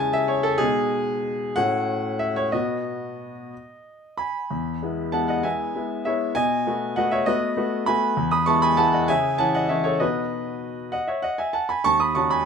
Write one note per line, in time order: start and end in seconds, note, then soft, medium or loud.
0.00 0.58 C#3 medium
0.00 0.57 G#3 soft
0.00 0.57 C#4 soft
0.00 0.57 E4 soft
0.00 0.14 G#5 medium
0.00 0.63 A5 medium
0.13 0.29 E5 medium
0.28 0.44 C#5 medium
0.43 0.60 A4 medium
0.58 1.53 B2 medium
0.58 1.52 G#3 medium
0.58 1.52 D#4 soft
0.58 1.56 G#4 loud
1.56 2.50 A2 medium
1.56 2.49 A3 soft
1.56 2.49 C#4 soft
1.56 2.50 F#4 soft
1.56 2.20 F#5 loud
2.19 2.36 E5 medium
2.36 2.53 C#5 medium
2.52 3.22 B2 soft
2.52 3.32 B3 soft
2.52 3.32 F#4 soft
2.52 4.18 D#5 medium
4.17 5.10 G#5 soft
4.17 5.13 B5 medium
4.50 4.81 E2 soft
4.83 5.11 G#3 soft
4.83 5.11 B3 soft
4.83 5.11 E4 soft
5.12 5.42 G#3 soft
5.12 5.42 B3 soft
5.12 5.42 E4 soft
5.12 5.27 F#5 medium
5.12 5.29 A5 medium
5.28 5.44 D#5 medium
5.28 5.44 F#5 medium
5.43 5.72 G#3 soft
5.43 5.72 B3 soft
5.43 5.73 E4 soft
5.43 6.02 E5 medium
5.43 6.06 G#5 medium
5.75 6.03 G#3 soft
5.75 6.03 B3 soft
5.75 6.04 E4 soft
6.05 6.34 G#3 soft
6.05 6.34 B3 soft
6.05 6.34 E4 soft
6.05 6.35 C#5 soft
6.05 6.36 E5 medium
6.35 6.66 B2 medium
6.35 6.93 D#5 medium
6.35 6.97 G#5 loud
6.67 6.94 A3 soft
6.67 6.94 B3 soft
6.67 6.95 F#4 soft
6.96 7.25 A3 soft
6.96 7.25 B3 soft
6.96 7.25 F#4 medium
6.96 7.12 D#5 medium
6.96 7.12 F#5 medium
7.11 7.27 C#5 medium
7.11 7.27 E5 medium
7.26 7.54 A3 soft
7.26 7.54 B3 soft
7.26 7.55 F#4 soft
7.26 7.83 B4 medium
7.26 7.87 D#5 medium
7.57 7.84 A3 soft
7.57 7.84 B3 soft
7.57 7.85 F#4 soft
7.86 8.14 A3 soft
7.86 8.15 B3 soft
7.86 8.15 F#4 soft
7.86 8.29 G#5 medium
7.86 8.31 B5 medium
8.17 8.47 E2 medium
8.31 8.47 B5 medium
8.31 8.47 D#6 medium
8.46 8.75 G#3 soft
8.46 8.75 B3 soft
8.46 8.75 E4 soft
8.46 8.62 A5 medium
8.46 8.62 C#6 medium
8.62 8.77 G#5 medium
8.62 8.78 B5 medium
8.77 9.06 G#3 soft
8.77 9.06 B3 soft
8.77 9.06 E4 soft
8.77 8.92 F#5 medium
8.77 8.93 A5 medium
8.93 9.08 D#5 medium
8.93 9.09 F#5 medium
9.08 9.39 C#3 medium
9.08 9.38 E5 medium
9.08 9.39 G#5 medium
9.38 9.67 E3 soft
9.38 9.67 C#4 soft
9.38 9.67 E4 soft
9.38 9.53 F#5 medium
9.38 9.54 A5 medium
9.54 9.70 D#5 medium
9.54 9.70 F#5 medium
9.69 9.97 E3 soft
9.69 9.98 C#4 soft
9.69 9.98 E4 soft
9.69 9.82 C#5 medium
9.69 9.85 E5 medium
9.84 10.00 A4 medium
9.84 10.00 C#5 medium
10.00 10.65 B2 soft
10.00 10.74 D#4 soft
10.00 10.75 F#4 soft
10.00 10.89 B4 medium
10.00 10.91 D#5 medium
10.92 11.07 D#5 medium
10.92 11.08 F#5 medium
11.07 11.23 C#5 soft
11.07 11.24 E5 medium
11.22 11.38 D#5 medium
11.22 11.39 F#5 medium
11.38 11.54 E5 medium
11.38 11.55 G#5 medium
11.53 11.69 F#5 medium
11.53 11.70 A5 medium
11.69 11.85 G#5 medium
11.69 11.85 B5 medium
11.84 12.16 D#2 medium
11.84 12.00 A5 medium
11.84 12.01 C#6 loud
12.00 12.16 B5 medium
12.00 12.16 D#6 medium
12.15 12.44 D#3 soft
12.15 12.44 C#4 soft
12.15 12.44 F#4 soft
12.15 12.31 A5 medium
12.15 12.31 C#6 medium
12.30 12.45 G#5 medium
12.30 12.45 B5 medium